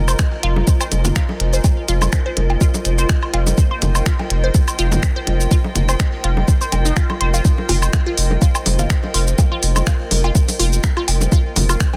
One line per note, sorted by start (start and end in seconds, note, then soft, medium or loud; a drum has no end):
0.00 0.14 F1 loud
0.00 11.97 F4 medium
0.00 11.97 A#4 medium
0.00 11.97 C5 medium
0.00 11.97 D#5 medium
0.00 0.41 A#5 loud
0.08 0.11 C5 medium
0.08 high woodblock medium
0.08 shaker soft
0.19 finger snap loud
0.19 kick loud
0.19 low bongo soft
0.19 shaker medium
0.39 1.98 G#5 loud
0.43 0.63 F1 loud
0.43 0.47 F4 medium
0.43 closed hi-hat loud
0.56 low bongo soft
0.67 kick loud
0.67 shaker medium
0.81 0.84 C5 medium
0.81 cowbell medium
0.81 high woodblock medium
0.81 shaker soft
0.92 1.11 F1 medium
0.92 closed hi-hat medium
0.92 low bongo soft
0.92 shaker soft
1.05 low conga loud
1.05 shaker soft
1.16 1.20 F4 medium
1.16 finger snap medium
1.16 kick loud
1.16 shaker medium
1.29 low bongo soft
1.40 1.60 F1 medium
1.40 closed hi-hat loud
1.53 1.57 C5 medium
1.53 shaker soft
1.64 kick loud
1.64 cowbell medium
1.64 low bongo soft
1.64 shaker medium
1.81 11.97 G5 loud
1.88 2.08 F1 loud
1.88 1.92 F4 medium
1.88 closed hi-hat loud
1.88 shaker soft
2.02 low bongo soft
2.02 high woodblock medium
2.02 shaker soft
2.13 finger snap loud
2.13 kick loud
2.13 shaker medium
2.26 2.29 C5 medium
2.37 2.56 F1 loud
2.37 closed hi-hat loud
2.37 low bongo soft
2.50 cowbell medium
2.61 2.65 F4 medium
2.61 kick loud
2.61 shaker medium
2.74 low bongo soft
2.74 shaker soft
2.85 3.05 F1 medium
2.85 closed hi-hat medium
2.85 shaker soft
2.98 3.02 C5 medium
2.98 shaker soft
3.09 finger snap loud
3.09 kick loud
3.09 low bongo soft
3.09 shaker medium
3.23 high woodblock medium
3.33 3.53 F1 loud
3.33 3.38 F4 medium
3.33 closed hi-hat loud
3.33 cowbell medium
3.47 low bongo soft
3.47 shaker soft
3.58 kick loud
3.58 shaker soft
3.71 3.74 C5 medium
3.82 4.01 F1 loud
3.82 closed hi-hat loud
3.82 low bongo soft
3.82 low conga medium
3.82 shaker soft
3.95 high woodblock medium
3.95 shaker soft
4.06 4.10 F4 medium
4.06 finger snap loud
4.06 kick loud
4.06 shaker medium
4.19 cowbell medium
4.19 low bongo soft
4.30 4.50 F1 loud
4.30 closed hi-hat loud
4.44 4.47 C5 medium
4.55 kick loud
4.55 low bongo soft
4.55 shaker medium
4.68 high woodblock medium
4.68 shaker soft
4.79 4.98 F1 medium
4.79 4.83 F4 medium
4.79 closed hi-hat medium
4.79 shaker soft
4.92 low bongo soft
4.92 low conga medium
4.92 shaker soft
5.03 finger snap loud
5.03 kick loud
5.03 cowbell medium
5.03 shaker medium
5.16 5.19 C5 medium
5.27 5.47 F1 loud
5.27 closed hi-hat loud
5.27 low bongo soft
5.40 shaker soft
5.51 5.55 F4 medium
5.51 kick loud
5.51 shaker soft
5.64 low bongo soft
5.75 5.95 F1 loud
5.75 closed hi-hat medium
5.75 low conga medium
5.75 shaker soft
5.89 5.92 C5 medium
5.89 cowbell medium
5.89 high woodblock medium
5.89 shaker soft
6.00 finger snap medium
6.00 kick loud
6.00 low bongo soft
6.00 shaker medium
6.24 6.43 F1 loud
6.24 6.28 F4 medium
6.24 closed hi-hat loud
6.37 low bongo soft
6.48 kick loud
6.48 shaker medium
6.61 6.65 C5 medium
6.61 shaker soft
6.72 6.92 F1 medium
6.72 closed hi-hat medium
6.72 cowbell medium
6.72 low bongo soft
6.72 shaker soft
6.85 6.91 D#4 medium
6.85 shaker soft
6.96 7.06 F4 loud
6.96 finger snap medium
6.96 kick loud
6.96 shaker soft
7.10 low bongo soft
7.10 high woodblock medium
7.21 7.40 F1 medium
7.21 7.27 C5 medium
7.21 closed hi-hat loud
7.34 7.39 F4 loud
7.34 shaker soft
7.45 kick loud
7.45 shaker soft
7.58 low bongo soft
7.69 7.89 F1 loud
7.69 7.73 F4 medium
7.69 open hi-hat medium
7.69 cowbell medium
7.69 low conga medium
7.69 shaker soft
7.82 high woodblock medium
7.82 shaker soft
7.93 finger snap medium
7.93 kick loud
7.93 low bongo soft
7.93 shaker medium
8.06 8.10 F4 medium
8.17 8.37 F1 loud
8.17 open hi-hat medium
8.31 low bongo soft
8.42 8.46 F4 medium
8.42 kick loud
8.42 shaker medium
8.55 cowbell medium
8.55 high woodblock medium
8.55 shaker soft
8.66 8.85 F1 medium
8.66 open hi-hat medium
8.66 low bongo soft
8.66 shaker soft
8.79 8.82 F4 medium
8.79 low conga medium
8.79 shaker soft
8.90 finger snap medium
8.90 kick loud
8.90 shaker soft
9.03 low bongo soft
9.14 9.34 F1 loud
9.14 9.18 F4 medium
9.14 open hi-hat medium
9.27 shaker soft
9.38 kick loud
9.38 cowbell medium
9.38 low bongo soft
9.38 shaker medium
9.52 9.55 F4 medium
9.63 9.82 F1 loud
9.63 open hi-hat medium
9.63 shaker soft
9.76 low bongo soft
9.76 high woodblock medium
9.76 shaker soft
9.87 9.91 F4 medium
9.87 finger snap medium
9.87 kick loud
9.87 shaker medium
10.11 10.31 F1 loud
10.11 open hi-hat medium
10.11 low bongo soft
10.24 10.27 F4 medium
10.24 cowbell medium
10.35 kick loud
10.35 shaker medium
10.48 open hi-hat soft
10.48 low bongo soft
10.48 shaker soft
10.59 10.79 F1 medium
10.59 10.63 F4 medium
10.59 open hi-hat medium
10.59 shaker soft
10.73 shaker soft
10.84 finger snap medium
10.84 kick loud
10.84 low bongo soft
10.84 shaker soft
10.97 11.00 F4 medium
10.97 high woodblock medium
11.08 11.27 F1 medium
11.08 open hi-hat medium
11.08 cowbell medium
11.21 low bongo soft
11.21 shaker soft
11.32 11.36 F4 medium
11.32 kick loud
11.32 shaker medium
11.56 11.76 F1 loud
11.56 open hi-hat medium
11.56 low bongo soft
11.56 low conga medium
11.56 shaker soft
11.69 11.73 F4 medium
11.69 high woodblock medium
11.69 shaker soft
11.80 finger snap medium
11.80 kick loud
11.80 shaker medium
11.94 cowbell medium
11.94 low bongo soft